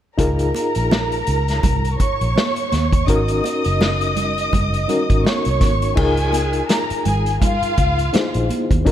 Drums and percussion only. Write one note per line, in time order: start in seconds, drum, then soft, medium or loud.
0.19 kick medium
0.19 closed hi-hat medium
0.39 closed hi-hat medium
0.55 closed hi-hat medium
0.55 muted conga soft
0.75 closed hi-hat soft
0.91 snare medium
0.91 high conga medium
1.12 closed hi-hat soft
1.27 closed hi-hat medium
1.48 snare soft
1.48 closed hi-hat soft
1.63 kick medium
1.63 closed hi-hat medium
1.63 muted conga medium
1.63 low conga medium
1.85 closed hi-hat soft
1.99 kick medium
1.99 closed hi-hat medium
1.99 muted conga soft
2.21 closed hi-hat soft
2.36 snare loud
2.36 high conga medium
2.56 closed hi-hat soft
2.72 snare soft
2.72 closed hi-hat medium
2.72 high conga medium
2.92 kick medium
2.92 closed hi-hat soft
3.08 kick medium
3.08 closed hi-hat medium
3.28 closed hi-hat medium
3.44 closed hi-hat medium
3.44 muted conga soft
3.64 closed hi-hat soft
3.81 snare medium
3.81 high conga medium
4.01 closed hi-hat soft
4.16 closed hi-hat medium
4.16 low conga medium
4.38 closed hi-hat soft
4.53 kick medium
4.53 closed hi-hat medium
4.53 muted conga medium
4.53 low conga medium
4.74 closed hi-hat soft
4.89 closed hi-hat medium
4.89 muted conga soft
4.89 low conga medium
5.10 kick medium
5.10 closed hi-hat soft
5.25 snare loud
5.25 high conga medium
5.45 closed hi-hat medium
5.61 kick medium
5.61 snare soft
5.61 closed hi-hat medium
5.61 high conga medium
5.82 closed hi-hat soft
5.97 kick medium
5.97 crash medium
6.17 closed hi-hat soft
6.33 closed hi-hat medium
6.33 muted conga soft
6.53 closed hi-hat soft
6.69 snare medium
6.69 closed hi-hat medium
6.69 high conga medium
6.90 closed hi-hat soft
7.05 closed hi-hat medium
7.05 low conga medium
7.26 closed hi-hat soft
7.42 kick medium
7.42 closed hi-hat medium
7.42 muted conga medium
7.42 low conga medium
7.63 closed hi-hat soft
7.77 kick medium
7.77 closed hi-hat medium
7.77 muted conga soft
7.99 closed hi-hat soft
8.14 snare loud
8.14 closed hi-hat medium
8.14 high conga medium
8.34 closed hi-hat medium
8.49 closed hi-hat medium
8.49 high conga medium
8.71 kick medium
8.71 closed hi-hat soft
8.71 high conga soft
8.86 kick medium
8.86 closed hi-hat medium